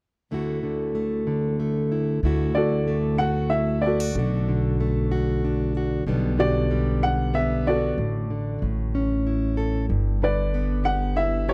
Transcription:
0.31 2.22 D2 soft
0.31 0.62 D3 soft
0.31 0.94 A3 soft
0.31 1.90 E4 soft
0.31 2.21 F#4 soft
0.63 1.26 D3 soft
0.95 1.58 A3 soft
1.27 2.23 D3 soft
1.60 2.20 A3 soft
1.92 2.20 E4 soft
2.23 4.11 D2 medium
2.23 4.15 D2 medium
2.23 2.54 D3 soft
2.23 2.87 A3 soft
2.23 3.49 E4 soft
2.23 3.20 F#4 soft
2.55 4.15 D3 soft
2.55 3.48 F#4 soft
2.55 3.48 A4 soft
2.55 3.15 D5 medium
2.88 4.11 A3 soft
3.18 3.82 F#4 medium
3.18 3.52 F#5 medium
3.50 3.82 E4 soft
3.50 3.83 E5 medium
3.82 4.00 E4 medium
3.82 5.69 D5 medium
3.86 5.72 F#4 soft
3.86 5.72 A4 soft
4.00 4.15 F#4 soft
4.15 6.02 B1 medium
4.15 4.47 B2 medium
4.15 4.47 D3 soft
4.15 4.79 A3 soft
4.15 5.44 D4 soft
4.19 5.11 F#4 medium
4.48 6.07 D3 soft
4.80 6.03 A3 soft
5.12 5.77 F#4 medium
5.44 6.03 D4 soft
5.77 6.03 F#4 medium
6.06 7.93 B1 medium
6.06 6.38 B2 medium
6.06 6.36 D3 soft
6.06 6.70 G3 soft
6.06 7.33 B3 soft
6.38 8.29 D3 soft
6.38 7.30 F#4 soft
6.38 7.30 G4 soft
6.38 7.04 D5 medium
6.71 7.98 G3 soft
7.03 7.35 F#5 medium
7.34 7.97 B3 soft
7.34 7.67 E5 medium
7.67 7.94 F#4 soft
7.67 9.54 F#4 soft
7.67 9.54 A4 soft
7.67 8.58 D5 medium
7.98 8.60 A1 medium
7.98 8.29 A2 medium
8.30 8.62 D3 soft
8.62 9.87 A1 medium
8.62 9.89 A2 medium
8.95 9.86 C#4 medium
9.27 10.25 E4 soft
9.57 9.85 A4 medium
9.89 11.53 G1 medium
9.89 11.53 G2 soft
10.22 11.53 D3 soft
10.22 11.14 B4 medium
10.22 10.88 D5 medium
10.54 11.53 B3 soft
10.84 11.48 G4 medium
10.84 11.18 F#5 medium
11.16 11.53 E4 soft
11.16 11.49 E5 medium
11.49 11.53 G4 medium
11.49 11.53 C#5 medium

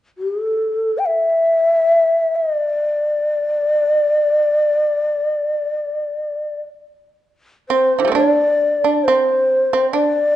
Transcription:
0.18 0.41 G4 medium
0.41 1.00 A4 medium
0.98 1.07 G5 soft
1.06 2.37 E5 medium
2.35 2.54 D#5 medium
2.54 6.61 D5 medium
7.69 8.11 C4 medium
7.69 8.12 C5 medium
7.99 8.04 D3 soft
7.99 8.15 E3 soft
8.05 8.19 G3 soft
8.05 8.22 A3 soft
8.12 8.15 C4 soft
8.12 8.79 D4 medium
8.12 9.06 D5 medium
8.84 9.05 D4 medium
9.04 9.69 C4 medium
9.04 9.91 C5 medium
9.73 9.93 C4 medium
9.92 10.36 D4 medium
9.92 10.36 D5 medium

